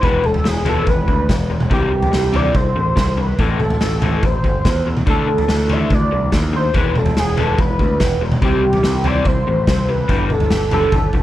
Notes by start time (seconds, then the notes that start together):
0.01 E1 E3 G#3 B3 B4, kick, floor tom
0.24 E3 G#3 A4, mid tom
0.34 floor tom
0.44 E1 E3 G#3 B3 G#4, snare
0.65 E3 G#3 B3 E4 A4, floor tom, mid tom
0.86 E1 E3 G#3 B3 B4, kick, floor tom
1.08 D2 E3 G#3, kick
1.29 E1 E3 G#3 B3, kick, snare, floor tom, mid tom
1.50 E3 G#3
1.60 mid tom
1.70 C2 C3 E3 G3 G4, kick, floor tom
1.91 C3 E3 G3
2.03 floor tom
2.12 C2 C3 E3 C4, snare
2.33 C3 E3 G3 E4 D5, floor tom
2.54 C2 C3 E3 C4 C5, kick, floor tom
2.76 A1 C3 E3
2.96 C2 C3 E3 C4, kick, snare, floor tom
3.17 C3 E3 G3 B4
3.39 A1 A2 E3 A3 A4, kick, floor tom
3.59 A2 E3 A3, mid tom
3.70 floor tom
3.81 A1 A2 E3 C4, snare
4.01 A2 E3 A3 E4, floor tom, mid tom
4.23 A1 A2 E3 C4 C5, kick, floor tom
4.43 G1 A2 E3, kick
4.64 E2 A2 E3 C4, kick, snare, floor tom, mid tom
4.85 A2 E3 A3
4.97 mid tom
5.06 D2 D3 A3 D4 A4, kick, floor tom
5.28 D3 A3
5.38 floor tom
5.48 D2 D3 A3 D4, snare
5.69 D3 A3 D4 F4 E5, floor tom
5.90 D2 D3 A3 D4 D5, kick, floor tom
6.11 C2 D3 A3
6.32 D#2 D3 A3 D4, kick, snare, floor tom
6.53 D3 A3 C5
6.74 E1 E3 G#3 B3 B4, kick, floor tom
6.95 E3 G#3 A4, mid tom
7.06 floor tom
7.16 E1 E3 G#3 B3 G#4, snare
7.37 E3 G#3 B3 E4 A4, floor tom, mid tom
7.58 E1 E3 G#3 B3 B4, kick, floor tom
7.79 D2 E3 G#3, kick
8.00 E1 E3 G#3 B3, kick, snare, floor tom, mid tom
8.21 E3 G#3
8.32 mid tom
8.42 C2 C3 G3 C4 G4, kick, floor tom
8.63 C3 G3
8.73 floor tom
8.83 C2 C3 G3 C4, snare
9.04 C3 G3 C4 E4 D5, floor tom
9.25 C2 C3 G3 C4 C5, kick, floor tom
9.47 A1 C3 E3 G3
9.67 C2 C3 G3 C4, kick, snare, floor tom
9.88 C3 G3 B4
10.08 G1 G2 D3 G3, kick, floor tom
10.29 G2 D3 D4 A4, mid tom
10.40 floor tom
10.50 G1 G2 D3 G4, snare
10.71 G2 D3 G3 A4 B4, floor tom, mid tom
10.92 G1 G2 D3 G4, kick, floor tom
11.13 F1 G2 D3 A3, kick